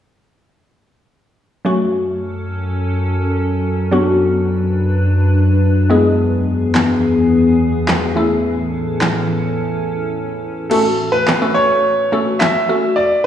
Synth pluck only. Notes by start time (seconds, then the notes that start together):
1.65 F#3 A3 C#4 F#4
3.91 F#3 B3 D4 F#4
5.90 G#3 B3 E4 G#4
8.16 A3 C#4 E4 A4
10.71 A3 C#4 F#4 A4
11.41 A3 C#4 F#4 A4
12.12 A3 C#4 F#4 A4
12.69 A3 C#4 F#4 A4